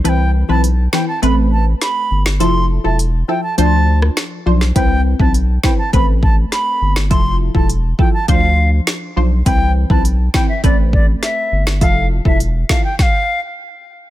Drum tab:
HH |x---x---x---x---|x---x---x---x---|x---x---x---x---|x---x---x---x---|
SD |------o-----o--o|-----------ro--o|------o-----o--o|------------o---|
BD |----------------|----------------|o--o--o-o-o-----|o--o--o-o-------|

HH |x---x---x---x---|x---x-----------|
SD |------o-----o--o|------o-o-------|
BD |o--o--o-o-o-----|o--o--o-o-------|